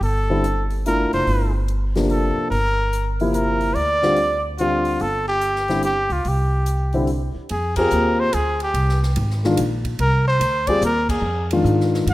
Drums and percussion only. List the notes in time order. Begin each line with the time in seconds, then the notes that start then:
0.03 open hi-hat
0.44 closed hi-hat
0.70 open hi-hat
0.86 closed hi-hat
1.13 open hi-hat
1.27 open hi-hat
1.68 closed hi-hat
1.95 snare, open hi-hat
2.10 open hi-hat
2.52 open hi-hat
2.93 closed hi-hat
3.20 open hi-hat
3.34 closed hi-hat
3.61 open hi-hat
3.75 open hi-hat
4.02 snare
4.16 open hi-hat
4.58 closed hi-hat
4.85 open hi-hat
5.00 open hi-hat
5.41 closed hi-hat
5.55 snare
5.68 snare, open hi-hat
5.83 closed hi-hat
6.10 open hi-hat
6.25 open hi-hat
6.66 closed hi-hat
6.93 open hi-hat
7.07 open hi-hat
7.49 ride
7.76 kick, crash
7.90 hi-hat pedal
8.33 hi-hat pedal, ride
8.60 ride
8.74 ride
8.89 snare
9.03 snare
9.16 ride
9.30 snare
9.44 snare
9.57 hi-hat pedal, ride
9.85 kick, ride
9.99 ride
10.41 hi-hat pedal, ride
10.67 kick, ride
10.82 hi-hat pedal
11.09 kick, crash
11.51 ride
11.65 hi-hat pedal
11.80 snare
11.94 snare
12.07 ride